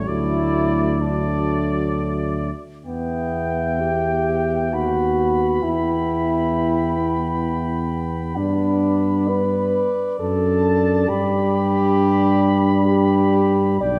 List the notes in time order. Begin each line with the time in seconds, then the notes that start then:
0.06 D2 F#3 A3 E4 D5
1.00 F#3 A3 D4 D5
2.86 E2 B3 E5 G5
3.80 G4
4.72 D#2 F#4 F#5 B5
5.63 E2 E4 G5
8.36 G2 B3 D4 D5
9.29 B4
10.20 F#2 D4 A4 A5
11.08 G2 G4 B5
12.88 G4
13.81 B1 D4 D5 G5